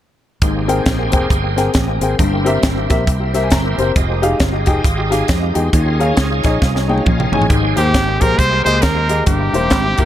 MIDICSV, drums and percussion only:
0, 0, Header, 1, 2, 480
1, 0, Start_track
1, 0, Key_signature, -4, "major"
1, 0, Tempo, 442804
1, 451, Time_signature, 4, 2, 24, 8
1, 10895, End_track
2, 0, Start_track
2, 0, Title_t, "Drums"
2, 452, Note_on_c, 9, 42, 75
2, 454, Note_on_c, 9, 36, 105
2, 560, Note_off_c, 9, 42, 0
2, 562, Note_off_c, 9, 36, 0
2, 748, Note_on_c, 9, 42, 63
2, 857, Note_off_c, 9, 42, 0
2, 929, Note_on_c, 9, 42, 75
2, 935, Note_on_c, 9, 36, 89
2, 935, Note_on_c, 9, 38, 105
2, 1038, Note_off_c, 9, 42, 0
2, 1044, Note_off_c, 9, 36, 0
2, 1044, Note_off_c, 9, 38, 0
2, 1214, Note_on_c, 9, 42, 68
2, 1228, Note_on_c, 9, 36, 91
2, 1322, Note_off_c, 9, 42, 0
2, 1337, Note_off_c, 9, 36, 0
2, 1414, Note_on_c, 9, 36, 105
2, 1423, Note_on_c, 9, 42, 73
2, 1522, Note_off_c, 9, 36, 0
2, 1531, Note_off_c, 9, 42, 0
2, 1704, Note_on_c, 9, 38, 31
2, 1710, Note_on_c, 9, 42, 64
2, 1812, Note_off_c, 9, 38, 0
2, 1818, Note_off_c, 9, 42, 0
2, 1883, Note_on_c, 9, 42, 84
2, 1895, Note_on_c, 9, 38, 99
2, 1897, Note_on_c, 9, 36, 93
2, 1991, Note_off_c, 9, 42, 0
2, 2003, Note_off_c, 9, 38, 0
2, 2006, Note_off_c, 9, 36, 0
2, 2183, Note_on_c, 9, 42, 62
2, 2291, Note_off_c, 9, 42, 0
2, 2375, Note_on_c, 9, 36, 111
2, 2375, Note_on_c, 9, 42, 78
2, 2483, Note_off_c, 9, 42, 0
2, 2484, Note_off_c, 9, 36, 0
2, 2669, Note_on_c, 9, 42, 61
2, 2778, Note_off_c, 9, 42, 0
2, 2848, Note_on_c, 9, 42, 76
2, 2854, Note_on_c, 9, 38, 112
2, 2855, Note_on_c, 9, 36, 83
2, 2957, Note_off_c, 9, 42, 0
2, 2963, Note_off_c, 9, 36, 0
2, 2963, Note_off_c, 9, 38, 0
2, 3143, Note_on_c, 9, 42, 77
2, 3147, Note_on_c, 9, 38, 33
2, 3148, Note_on_c, 9, 36, 91
2, 3251, Note_off_c, 9, 42, 0
2, 3255, Note_off_c, 9, 38, 0
2, 3257, Note_off_c, 9, 36, 0
2, 3332, Note_on_c, 9, 36, 107
2, 3340, Note_on_c, 9, 42, 75
2, 3440, Note_off_c, 9, 36, 0
2, 3449, Note_off_c, 9, 42, 0
2, 3619, Note_on_c, 9, 38, 35
2, 3626, Note_on_c, 9, 42, 64
2, 3728, Note_off_c, 9, 38, 0
2, 3734, Note_off_c, 9, 42, 0
2, 3800, Note_on_c, 9, 42, 83
2, 3811, Note_on_c, 9, 38, 101
2, 3815, Note_on_c, 9, 36, 86
2, 3908, Note_off_c, 9, 42, 0
2, 3920, Note_off_c, 9, 38, 0
2, 3923, Note_off_c, 9, 36, 0
2, 4104, Note_on_c, 9, 42, 64
2, 4212, Note_off_c, 9, 42, 0
2, 4291, Note_on_c, 9, 42, 78
2, 4292, Note_on_c, 9, 36, 108
2, 4399, Note_off_c, 9, 42, 0
2, 4401, Note_off_c, 9, 36, 0
2, 4585, Note_on_c, 9, 42, 62
2, 4694, Note_off_c, 9, 42, 0
2, 4766, Note_on_c, 9, 42, 71
2, 4772, Note_on_c, 9, 36, 90
2, 4772, Note_on_c, 9, 38, 100
2, 4874, Note_off_c, 9, 42, 0
2, 4880, Note_off_c, 9, 36, 0
2, 4880, Note_off_c, 9, 38, 0
2, 5051, Note_on_c, 9, 42, 77
2, 5064, Note_on_c, 9, 36, 86
2, 5160, Note_off_c, 9, 42, 0
2, 5173, Note_off_c, 9, 36, 0
2, 5251, Note_on_c, 9, 36, 100
2, 5259, Note_on_c, 9, 42, 78
2, 5360, Note_off_c, 9, 36, 0
2, 5368, Note_off_c, 9, 42, 0
2, 5544, Note_on_c, 9, 38, 35
2, 5550, Note_on_c, 9, 42, 66
2, 5652, Note_off_c, 9, 38, 0
2, 5658, Note_off_c, 9, 42, 0
2, 5725, Note_on_c, 9, 42, 82
2, 5736, Note_on_c, 9, 36, 102
2, 5737, Note_on_c, 9, 38, 98
2, 5834, Note_off_c, 9, 42, 0
2, 5844, Note_off_c, 9, 36, 0
2, 5846, Note_off_c, 9, 38, 0
2, 6019, Note_on_c, 9, 42, 62
2, 6127, Note_off_c, 9, 42, 0
2, 6213, Note_on_c, 9, 36, 109
2, 6213, Note_on_c, 9, 42, 79
2, 6321, Note_off_c, 9, 36, 0
2, 6321, Note_off_c, 9, 42, 0
2, 6510, Note_on_c, 9, 42, 58
2, 6618, Note_off_c, 9, 42, 0
2, 6686, Note_on_c, 9, 42, 77
2, 6692, Note_on_c, 9, 38, 101
2, 6693, Note_on_c, 9, 36, 82
2, 6794, Note_off_c, 9, 42, 0
2, 6800, Note_off_c, 9, 38, 0
2, 6801, Note_off_c, 9, 36, 0
2, 6976, Note_on_c, 9, 42, 76
2, 6980, Note_on_c, 9, 38, 30
2, 6987, Note_on_c, 9, 36, 84
2, 7084, Note_off_c, 9, 42, 0
2, 7088, Note_off_c, 9, 38, 0
2, 7096, Note_off_c, 9, 36, 0
2, 7175, Note_on_c, 9, 36, 102
2, 7178, Note_on_c, 9, 38, 54
2, 7283, Note_off_c, 9, 36, 0
2, 7286, Note_off_c, 9, 38, 0
2, 7329, Note_on_c, 9, 38, 54
2, 7438, Note_off_c, 9, 38, 0
2, 7472, Note_on_c, 9, 48, 65
2, 7562, Note_off_c, 9, 48, 0
2, 7562, Note_on_c, 9, 48, 64
2, 7655, Note_on_c, 9, 47, 79
2, 7659, Note_on_c, 9, 36, 91
2, 7671, Note_off_c, 9, 48, 0
2, 7763, Note_off_c, 9, 47, 0
2, 7767, Note_off_c, 9, 36, 0
2, 7804, Note_on_c, 9, 45, 75
2, 7912, Note_off_c, 9, 45, 0
2, 7944, Note_on_c, 9, 43, 87
2, 8039, Note_off_c, 9, 43, 0
2, 8039, Note_on_c, 9, 43, 85
2, 8129, Note_on_c, 9, 42, 72
2, 8131, Note_on_c, 9, 36, 97
2, 8148, Note_off_c, 9, 43, 0
2, 8238, Note_off_c, 9, 42, 0
2, 8240, Note_off_c, 9, 36, 0
2, 8421, Note_on_c, 9, 42, 62
2, 8529, Note_off_c, 9, 42, 0
2, 8609, Note_on_c, 9, 42, 71
2, 8612, Note_on_c, 9, 36, 87
2, 8615, Note_on_c, 9, 38, 91
2, 8718, Note_off_c, 9, 42, 0
2, 8720, Note_off_c, 9, 36, 0
2, 8724, Note_off_c, 9, 38, 0
2, 8899, Note_on_c, 9, 42, 76
2, 8908, Note_on_c, 9, 36, 85
2, 9008, Note_off_c, 9, 42, 0
2, 9017, Note_off_c, 9, 36, 0
2, 9092, Note_on_c, 9, 36, 98
2, 9103, Note_on_c, 9, 42, 66
2, 9200, Note_off_c, 9, 36, 0
2, 9211, Note_off_c, 9, 42, 0
2, 9390, Note_on_c, 9, 42, 64
2, 9498, Note_off_c, 9, 42, 0
2, 9560, Note_on_c, 9, 42, 90
2, 9572, Note_on_c, 9, 38, 99
2, 9574, Note_on_c, 9, 36, 95
2, 9668, Note_off_c, 9, 42, 0
2, 9680, Note_off_c, 9, 38, 0
2, 9683, Note_off_c, 9, 36, 0
2, 9858, Note_on_c, 9, 42, 68
2, 9966, Note_off_c, 9, 42, 0
2, 10042, Note_on_c, 9, 42, 71
2, 10049, Note_on_c, 9, 36, 109
2, 10150, Note_off_c, 9, 42, 0
2, 10157, Note_off_c, 9, 36, 0
2, 10345, Note_on_c, 9, 42, 63
2, 10453, Note_off_c, 9, 42, 0
2, 10518, Note_on_c, 9, 42, 74
2, 10524, Note_on_c, 9, 38, 108
2, 10530, Note_on_c, 9, 36, 80
2, 10627, Note_off_c, 9, 42, 0
2, 10633, Note_off_c, 9, 38, 0
2, 10638, Note_off_c, 9, 36, 0
2, 10814, Note_on_c, 9, 42, 77
2, 10824, Note_on_c, 9, 36, 80
2, 10895, Note_off_c, 9, 36, 0
2, 10895, Note_off_c, 9, 42, 0
2, 10895, End_track
0, 0, End_of_file